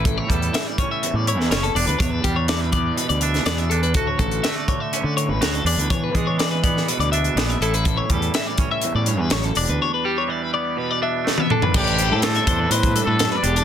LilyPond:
<<
  \new Staff \with { instrumentName = "Clean electric guitar" } { \time 4/4 \key a \mixolydian \tempo 4 = 123 a'16 cis''16 a'8 e''16 d''16 cis''16 e''8 d''16 cis''16 b'16 cis''16 a'16 d''16 b'16 | cis''16 b'16 g'16 cis''16 d''16 b'16 d''8 b'16 d''16 e''8 d''16 e''16 a'16 b'16 | a'16 cis''16 a'8 e''16 d''16 cis''16 e''8 d''16 cis''16 b'16 cis''16 a'16 d''16 b'16 | cis''16 b'16 gis'16 cis''16 d''16 b'16 d''8 b'16 d''16 e''8 d''16 e''16 a'16 b'16 |
a'16 cis''16 a'8 e''16 d''16 cis''16 e''8 d''16 cis''16 b'16 cis''16 a'16 d''16 b'16 | cis''16 b'16 g'16 cis''16 d''16 b'16 d''8 b'16 d''16 e''8 d''16 e''16 a'16 b'16 | d''8 c''16 a'16 c''16 e''16 c''16 b'16 c''8 a'16 b'16 a'16 b'16 g'16 a'16 | }
  \new Staff \with { instrumentName = "Trumpet" } { \time 4/4 \key a \mixolydian r1 | r1 | r1 | r1 |
r1 | r1 | g'4 a'4 \tuplet 3/2 { b'4 a'8~ a'8 d''4 } | }
  \new Staff \with { instrumentName = "Clean electric guitar" } { \clef bass \time 4/4 \key a \mixolydian << { e'8 g4 cis'4 e'8 cis'8 d'8~ | d'8 g4 b4 d'8 b8 d'8 | fis'4 a4 cis'4 fis'8 d'8~ | d'8 gis4 b4 d'8 b8 e'8~ |
e'8 g4 cis'2 d'8~ | d'8 g4 b4 d'8 a16 b16 d'8 | d'8 g8 c'8 d'2 d'8 | } \\ { a,4 e4 e,4. e,8~ | e,4 e4 b,4. e,8 | d,4. d4 a,4 e,8~ | e,4 e4 b,4. a,8~ |
a,4 e4 e,8 g,8 fis,8 e,8~ | e,4 e4 b,4. e,8 | a,2 e,8 g,8 fis,8 e,8 | } >> }
  \new Staff \with { instrumentName = "Fingered electric bass" } { \clef bass \time 4/4 \key a \mixolydian a,,8 e,8 r4 r16 a,8 e,16 fis,,8 e,,16 d,16 | e,8 e,4.~ e,16 d,8. e,4 | d,8 a,,8 r4 r16 d8 a,,16 d,8 e,16 d,16 | e8 e4.~ e16 d,8. bes,,8 a,,8~ |
a,,8 e,8 r4 r16 a,8 e,16 a,,8 e,,16 d,16 | r1 | a,,8. a,8. e,8 a,8. a,8 r16 e,,8 | }
  \new DrumStaff \with { instrumentName = "Drums" } \drummode { \time 4/4 <hh bd>8 <hh bd>16 hh16 <hh sn>8 <hh bd>8 hh8 hh16 sn16 <hh sn>16 hh16 hho16 hh16 | <hh bd>8 <hh bd>8 <hh sn>8 <hh bd>8 hh16 hh16 hh16 <hh sn>16 <hh sn>16 hh16 hh16 hh16 | <hh bd>8 <hh bd>16 hh16 <hh sn>8 <hh bd>8 hh8 hh8 <hh sn>16 hh16 hho16 hh16 | <hh bd>8 <hh bd>8 <hh sn>8 <hh bd>16 sn16 hh16 hh16 hh16 hh16 <hh sn>16 hh16 hh16 hh16 |
<hh bd>8 <hh bd>16 hh16 <hh sn>8 <hh bd>8 hh8 hh8 <hh sn>16 hh16 hho16 hh16 | r4 r4 r4 sn16 tommh16 toml16 tomfh16 | <cymc bd>16 hh16 hh8 <hh sn>16 hh16 <hh bd>8 hh16 <hh bd>16 hh8 <hh sn>8 hh16 hh16 | }
>>